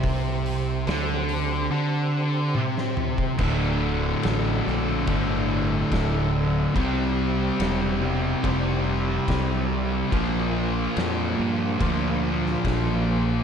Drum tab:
CC |----------------|x---------------|----------------|----------------|
RD |----------------|----b---b---b---|b---b---b---b---|b---b---b---b---|
HH |o-o-o-o---------|----------------|----------------|----------------|
SD |----o--------o--|----o-o-----o---|----o-------o---|----o------oo---|
T1 |------------o---|----------------|----------------|----------------|
T2 |--------------o-|----------------|----------------|----------------|
BD |o--------------o|o-------o---o---|o-------o---o---|o-------o---o---|